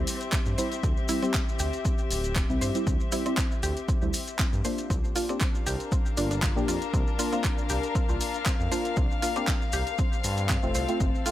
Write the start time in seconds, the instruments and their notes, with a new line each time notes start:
Already playing: string section C4 G4 E5
0.07 open hi-hat, maracas
0.21 closed hi-hat, maracas
0.32 synth arpeggio sound C4, kick, clap, closed hi-hat, maracas
0.46 analog synth bass G2, maracas
0.58 synth stab G3 C4 E4, synth arpeggio sound C5, open hi-hat, maracas
0.72 closed hi-hat, maracas
0.83 analog synth bass D2, synth arpeggio sound C4, kick, closed hi-hat, maracas
0.97 maracas
1.08 synth stab G3 C4 E4, synth arpeggio sound E4, open hi-hat, maracas
1.22 synth stab G3 C4 G4, synth arpeggio sound C4, closed hi-hat, maracas
1.34 synth arpeggio sound C4, kick, clap, closed hi-hat, maracas
1.49 maracas
1.59 analog synth bass D2, synth arpeggio sound G4, open hi-hat, maracas
1.73 closed hi-hat, maracas
1.85 synth arpeggio sound C4, kick, closed hi-hat, maracas
1.98 maracas
2.11 analog synth bass D1, open hi-hat, maracas
2.24 closed hi-hat, maracas
2.36 synth arpeggio sound C4, kick, clap, closed hi-hat, maracas
2.49 analog synth bass C2, synth stab G3 C4 E4, maracas
2.61 analog synth bass G2, synth arpeggio sound C5, open hi-hat, maracas
2.75 synth stab G3 C4 E4, closed hi-hat, maracas
2.87 analog synth bass D2, synth arpeggio sound C4, kick, closed hi-hat, maracas
3.00 maracas
3.12 synth stab G3 C4 E4, synth arpeggio sound E4, open hi-hat, maracas
3.25 synth stab G3 C4 E4, synth arpeggio sound C4, closed hi-hat, maracas
3.37 synth arpeggio sound C4, kick, clap, maracas
3.51 maracas
3.63 analog synth bass D2, synth arpeggio sound G4, open hi-hat, maracas
3.77 closed hi-hat, maracas
3.89 synth arpeggio sound C4, kick, closed hi-hat, maracas
4.02 analog synth bass D2, synth stab G3 C4 E4, maracas
4.13 open hi-hat, maracas
4.27 closed hi-hat, maracas
4.39 synth arpeggio sound C4, kick, clap, closed hi-hat, maracas
4.53 analog synth bass G2, maracas
4.64 synth stab A#3 D4 F4, synth arpeggio sound C5, open hi-hat, maracas
4.78 closed hi-hat, maracas
4.90 analog synth bass C2, synth arpeggio sound C4, string section D4, kick, closed hi-hat, maracas
5.04 maracas
5.15 synth stab A#3 D4 F4, synth arpeggio sound F4, open hi-hat, maracas
5.29 synth stab A#3 D4 G4, synth arpeggio sound C4, closed hi-hat, maracas
5.41 synth arpeggio sound C4, kick, clap, closed hi-hat, maracas
5.51 string section A#4 F5, maracas
5.66 analog synth bass C2, synth arpeggio sound G4, open hi-hat, maracas
5.80 closed hi-hat, maracas
5.92 synth arpeggio sound C4, kick, closed hi-hat, maracas
6.06 maracas
6.17 analog synth bass G1, synth stab A#3 D4 F4, synth arpeggio sound D4, open hi-hat, maracas
6.31 synth arpeggio sound D4, closed hi-hat, maracas
6.42 synth arpeggio sound F4, kick, clap, closed hi-hat, maracas
6.56 analog synth bass A#1, synth stab A#3 D4 G4, maracas
6.68 analog synth bass F2, synth arpeggio sound F4, open hi-hat, maracas
6.82 closed hi-hat, maracas
6.94 analog synth bass C2, synth arpeggio sound C4, kick, closed hi-hat, maracas
7.07 maracas
7.19 synth stab A#3 D4 F4, synth arpeggio sound F4, open hi-hat, maracas
7.32 synth stab A#3 D4 F4, synth arpeggio sound C4, closed hi-hat, maracas
7.44 synth arpeggio sound C4, kick, clap, closed hi-hat, maracas
7.58 maracas
7.69 analog synth bass C2, synth arpeggio sound G4, open hi-hat, maracas
7.83 closed hi-hat, maracas
7.95 synth arpeggio sound C4, kick, closed hi-hat, maracas
8.09 analog synth bass C2, synth stab A#3 D4 F4, maracas
8.21 open hi-hat, maracas
8.34 closed hi-hat, maracas
8.46 synth arpeggio sound C4, kick, clap, closed hi-hat, maracas
8.60 analog synth bass F2, maracas
8.71 synth stab A#3 D4 F4, synth arpeggio sound C5, open hi-hat, maracas
8.85 closed hi-hat, maracas
8.96 analog synth bass C2, synth arpeggio sound C4, kick, closed hi-hat, maracas
9.11 maracas
9.22 synth stab A#3 D4 F4, synth arpeggio sound F4, open hi-hat, maracas
9.36 synth stab A#3 D4 G4, synth arpeggio sound C4, closed hi-hat, maracas
9.47 synth arpeggio sound C4, kick, clap, maracas
9.62 maracas
9.73 analog synth bass C2, synth arpeggio sound G4, open hi-hat, maracas
9.87 closed hi-hat, maracas
9.98 string section C4, synth arpeggio sound C4, kick, closed hi-hat, maracas
10.12 string section A4, maracas
10.24 analog synth bass G2, open hi-hat, maracas
10.37 closed hi-hat, maracas
10.49 synth arpeggio sound C4, kick, clap, closed hi-hat, maracas
10.62 analog synth bass F1, synth stab A3 C4 F4, maracas
10.74 analog synth bass C2, synth arpeggio sound C5, open hi-hat, maracas
10.88 synth stab A3 C4 F4, closed hi-hat, maracas
11.00 analog synth bass G1, synth arpeggio sound C4, kick, closed hi-hat, maracas
11.15 maracas
11.25 synth stab A3 C4 F4, synth arpeggio sound F4, open hi-hat, maracas